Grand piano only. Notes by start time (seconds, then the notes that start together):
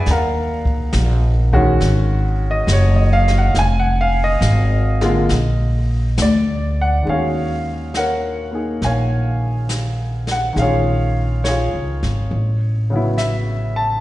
0.11 A#4 F5 F#5 A#5
1.53 D#3 G#3 C#4 F#4
2.51 D#5
2.73 C#5
2.96 D#5
3.13 F5
3.38 F#5
3.59 G#5
3.79 F#5
4.01 F5
4.24 D#5
5.01 D3 G#3 A#3 F4
6.22 D5
6.81 F#5
7.02 D#3 G#3
7.09 C#4 G#4 C#5 F5
7.14 F#4
7.97 A#4 C#5 F#5
8.51 A#3 D#4 G#4
8.85 C#5 F5 G#5
10.32 F#5
10.53 D#3 G#3
10.59 C#4 G#4 C#5 F5
10.64 F4
11.44 G#4 C#5
11.48 F4
12.90 C#3 F#3 B3
12.96 E4
13.18 E5
13.76 A5